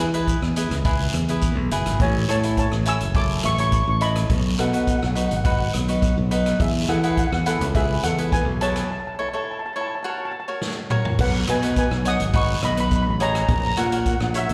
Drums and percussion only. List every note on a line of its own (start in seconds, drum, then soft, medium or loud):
0.14 closed hi-hat medium
0.27 kick medium
0.27 closed hi-hat medium
0.27 short guiro medium
0.42 cross-stick medium
0.56 closed hi-hat medium
0.56 short guiro medium
0.71 cross-stick medium
0.71 closed hi-hat medium
0.85 kick loud
0.85 closed hi-hat medium
0.85 long guiro medium
1.14 cross-stick medium
1.14 closed hi-hat medium
1.14 short guiro medium
1.28 closed hi-hat medium
1.42 kick medium
1.42 closed hi-hat medium
1.42 short guiro medium
1.71 closed hi-hat medium
1.86 cross-stick medium
1.86 closed hi-hat medium
2.00 kick loud
2.00 closed hi-hat medium
2.00 long guiro medium
2.29 cross-stick medium
2.29 closed hi-hat medium
2.43 closed hi-hat medium
2.57 kick medium
2.57 closed hi-hat medium
2.57 short guiro medium
2.72 cross-stick medium
2.85 closed hi-hat medium
2.85 short guiro medium
3.01 closed hi-hat medium
3.14 kick loud
3.14 closed hi-hat medium
3.14 long guiro medium
3.43 cross-stick medium
3.43 closed hi-hat medium
3.43 short guiro medium
3.58 closed hi-hat medium
3.72 kick loud
3.72 closed hi-hat medium
3.72 short guiro medium
4.01 closed hi-hat medium
4.16 cross-stick medium
4.16 closed hi-hat medium
4.30 kick loud
4.30 closed hi-hat medium
4.30 long guiro medium
4.59 cross-stick medium
4.59 closed hi-hat medium
4.74 closed hi-hat medium
4.87 kick medium
4.87 closed hi-hat medium
4.87 short guiro medium
5.03 cross-stick medium
5.16 closed hi-hat medium
5.16 short guiro medium
5.31 closed hi-hat medium
5.45 kick loud
5.45 closed hi-hat medium
5.45 long guiro medium
5.74 cross-stick medium
5.74 closed hi-hat medium
5.74 short guiro medium
5.88 closed hi-hat medium
6.02 kick loud
6.02 closed hi-hat medium
6.02 short guiro medium
6.31 closed hi-hat medium
6.46 cross-stick medium
6.46 closed hi-hat medium
6.60 kick loud
6.60 closed hi-hat medium
6.60 long guiro medium
6.89 cross-stick medium
6.89 closed hi-hat medium
7.04 closed hi-hat medium
7.17 kick medium
7.17 closed hi-hat medium
7.17 short guiro medium
7.32 cross-stick medium
7.46 closed hi-hat loud
7.46 short guiro medium
7.61 closed hi-hat medium
7.75 kick loud
7.75 closed hi-hat medium
7.75 long guiro medium
8.03 cross-stick medium
8.03 closed hi-hat medium
8.03 short guiro medium
8.18 closed hi-hat medium
8.32 kick medium
8.32 closed hi-hat medium
8.32 short guiro medium
8.61 closed hi-hat medium
8.76 cross-stick medium
8.76 closed hi-hat medium
10.62 snare medium
10.90 mid tom medium
11.05 floor tom medium
11.19 kick loud
11.19 crash loud
11.19 long guiro medium
11.47 cross-stick medium
11.47 closed hi-hat loud
11.63 closed hi-hat medium
11.76 kick medium
11.76 closed hi-hat medium
11.76 short guiro medium
11.91 cross-stick medium
12.05 closed hi-hat medium
12.05 short guiro medium
12.20 closed hi-hat medium
12.34 kick loud
12.34 closed hi-hat medium
12.34 long guiro medium
12.62 cross-stick medium
12.62 closed hi-hat medium
12.62 short guiro medium
12.77 closed hi-hat medium
12.91 kick medium
12.91 closed hi-hat medium
12.91 short guiro medium
13.20 closed hi-hat medium
13.35 cross-stick medium
13.35 closed hi-hat medium
13.49 kick loud
13.49 closed hi-hat medium
13.49 long guiro medium
13.77 cross-stick medium
13.77 closed hi-hat medium
13.92 closed hi-hat medium
14.06 kick medium
14.06 closed hi-hat medium
14.06 short guiro medium
14.20 cross-stick medium
14.34 closed hi-hat medium
14.34 short guiro medium
14.49 closed hi-hat medium